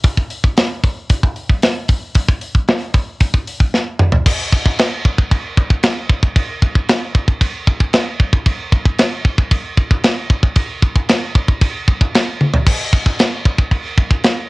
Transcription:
0.04 kick loud
0.04 open hi-hat medium
0.17 kick medium
0.30 open hi-hat medium
0.44 kick medium
0.57 snare loud
0.57 open hi-hat medium
0.84 kick medium
0.84 open hi-hat soft
1.09 kick medium
1.09 open hi-hat medium
1.23 kick medium
1.36 open hi-hat soft
1.49 kick medium
1.62 snare loud
1.62 open hi-hat medium
1.88 kick medium
1.88 open hi-hat medium
2.15 kick loud
2.15 open hi-hat medium
2.29 kick medium
2.41 open hi-hat medium
2.55 kick medium
2.68 snare loud
2.68 open hi-hat medium
2.94 kick medium
2.94 open hi-hat soft
3.20 kick medium
3.20 open hi-hat medium
3.34 kick medium
3.47 open hi-hat medium
3.60 kick medium
3.74 snare medium
3.99 mid tom medium
4.12 floor tom medium
4.26 kick loud
4.26 crash loud
4.26 crash medium
4.53 kick loud
4.66 kick medium
4.79 snare loud
4.79 crash medium
5.05 kick medium
5.18 kick medium
5.31 kick medium
5.31 crash medium
5.57 kick medium
5.70 kick medium
5.83 snare loud
5.83 crash medium
6.10 kick medium
6.23 kick medium
6.36 kick loud
6.36 crash medium
6.62 kick medium
6.75 kick medium
6.88 snare loud
6.88 crash medium
7.15 kick medium
7.28 kick medium
7.41 kick medium
7.41 crash medium
7.67 kick loud
7.80 kick medium
7.93 snare loud
7.93 crash medium
8.20 kick medium
8.33 kick medium
8.46 kick loud
8.46 crash medium
8.72 kick loud
8.86 kick medium
8.98 snare loud
8.98 crash medium
9.25 kick medium
9.38 kick medium
9.51 kick loud
9.51 crash medium
9.78 kick medium
9.91 kick medium
10.04 snare loud
10.04 crash medium
10.30 kick medium
10.43 kick medium
10.55 kick loud
10.55 crash medium
10.82 kick medium
10.96 kick medium
11.09 snare loud
11.09 crash medium
11.35 kick medium
11.48 kick medium
11.61 kick loud
11.61 crash medium
11.88 kick medium
12.01 kick medium
12.14 snare loud
12.14 crash medium
12.41 high tom medium
12.54 floor tom medium
12.67 kick loud
12.67 crash loud
12.67 crash medium
12.93 kick loud
13.06 kick medium
13.19 snare loud
13.19 crash medium
13.45 kick medium
13.58 kick medium
13.71 kick medium
13.71 crash medium
13.98 kick loud
14.11 kick medium
14.24 snare loud
14.24 crash medium

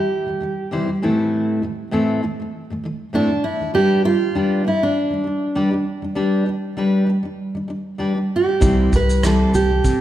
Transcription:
0.00 0.20 C3 soft
0.00 0.21 E3 soft
0.00 0.21 G3 soft
0.00 0.98 G4 medium
0.26 0.39 C3 soft
0.26 0.41 E3 soft
0.26 0.42 G3 soft
0.40 0.65 C3 soft
0.40 0.66 E3 medium
0.40 0.67 G3 medium
0.71 0.86 C3 medium
0.71 0.88 E3 medium
0.71 0.88 G3 medium
0.71 0.88 C4 medium
0.71 0.89 E4 medium
0.71 0.89 C5 medium
0.87 1.01 C3 soft
0.87 1.01 E3 soft
0.87 1.02 G3 soft
1.02 1.61 A2 medium
1.02 1.62 E3 medium
1.02 1.63 A3 medium
1.02 1.63 C4 medium
1.02 1.63 E4 medium
1.02 1.63 A4 medium
1.62 1.87 A2 medium
1.62 1.87 E3 medium
1.91 2.22 A2 medium
1.91 2.22 E3 medium
1.91 2.23 A3 medium
1.91 2.23 C4 medium
1.91 2.23 E4 medium
1.91 2.23 A4 medium
2.23 2.38 A2 medium
2.23 2.40 E3 medium
2.23 2.40 A3 medium
2.40 2.63 A2 soft
2.40 2.64 E3 soft
2.40 2.64 A3 soft
2.70 2.82 A2 medium
2.70 2.84 E3 soft
2.70 2.85 A3 medium
2.84 3.08 A2 medium
2.84 3.09 E3 medium
2.84 3.09 A3 medium
3.13 3.29 A2 medium
3.13 3.30 E3 medium
3.13 3.31 A3 medium
3.13 3.30 C4 medium
3.13 3.43 D4 medium
3.13 3.31 E4 medium
3.13 3.31 A4 medium
3.30 3.54 A2 soft
3.30 3.54 E3 soft
3.30 3.55 A3 soft
3.44 3.74 E4 medium
3.60 3.74 A2 soft
3.60 3.75 E3 soft
3.60 3.73 A3 soft
3.74 4.03 G3 medium
3.74 4.05 D4 medium
3.74 4.05 G4 loud
3.74 4.05 G4 medium
3.74 4.05 B4 medium
4.05 4.30 G3 soft
4.05 4.31 D4 medium
4.05 4.67 F4 medium
4.35 4.63 G3 medium
4.35 4.66 D4 medium
4.35 4.66 G4 medium
4.35 4.66 B4 medium
4.64 4.79 G3 medium
4.64 4.82 D4 medium
4.64 4.82 E4 medium
4.80 5.05 G3 soft
4.80 5.06 D4 soft
4.80 5.84 D4 medium
5.10 5.23 G3 soft
5.10 5.26 D4 soft
5.24 5.50 G3 medium
5.24 5.52 D4 medium
5.55 5.70 G3 medium
5.55 5.73 D4 medium
5.55 5.73 G4 medium
5.55 5.74 B4 medium
5.72 5.96 G3 soft
5.72 5.98 D4 medium
6.02 6.14 G3 soft
6.02 6.15 D4 medium
6.15 6.45 G3 medium
6.15 6.47 D4 medium
6.15 6.48 G4 medium
6.15 6.48 B4 medium
6.46 6.72 G3 medium
6.46 6.74 D4 medium
6.77 7.05 G3 medium
6.77 7.08 D4 medium
6.77 7.09 G4 medium
6.77 7.09 B4 medium
7.07 7.22 G3 medium
7.07 7.24 D4 medium
7.23 7.48 G3 soft
7.23 7.50 D4 soft
7.55 7.67 G3 medium
7.55 7.69 D4 medium
7.68 7.94 G3 medium
7.68 7.95 D4 medium
7.98 8.14 G3 medium
7.98 8.17 D4 medium
7.98 8.17 G4 medium
7.98 8.17 B4 medium
8.15 8.40 G3 soft
8.15 8.42 D4 soft
8.36 8.95 G4 medium
8.46 8.60 G3 soft
8.46 8.61 D4 soft
8.60 8.87 C2 medium
8.60 8.90 C3 medium
8.60 8.92 E3 medium
8.60 8.92 G3 medium
8.60 8.92 C4 medium
8.60 8.92 E4 medium
8.60 8.92 C5 medium
8.60 kick loud
8.60 shaker medium
8.92 9.43 C2 medium
8.92 9.17 C3 soft
8.92 9.18 E3 soft
8.92 9.18 G3 medium
8.92 9.23 B4 medium
8.92 kick medium
8.92 shaker soft
9.10 shaker soft
9.23 9.53 C3 medium
9.23 9.54 E3 medium
9.23 9.54 G3 medium
9.23 9.54 C4 medium
9.23 9.54 E4 medium
9.23 9.54 A4 medium
9.23 9.54 C5 medium
9.23 cross-stick medium
9.23 shaker medium
9.54 9.79 C2 medium
9.54 9.69 C3 medium
9.54 9.70 E3 medium
9.54 9.71 G3 medium
9.54 10.01 G4 medium
9.54 shaker soft
9.70 9.94 C3 soft
9.70 9.95 E3 soft
9.70 9.95 G3 soft
9.84 10.01 C3 medium
9.84 kick medium
9.84 shaker medium

